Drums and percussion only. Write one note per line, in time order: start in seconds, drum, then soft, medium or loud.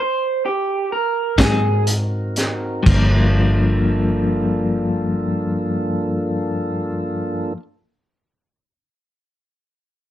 1.38 kick medium
1.38 snare loud
1.38 closed hi-hat medium
1.87 closed hi-hat medium
2.36 snare soft
2.36 closed hi-hat medium
2.86 kick loud
2.86 crash medium